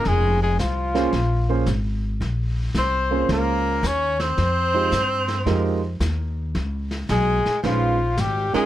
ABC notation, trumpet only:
X:1
M:4/4
L:1/8
Q:"Swing" 1/4=111
K:Fm
V:1 name="Trumpet"
A A F4 z2 | z2 c2 B2 d c- | c6 z2 | z2 A2 F2 G A |]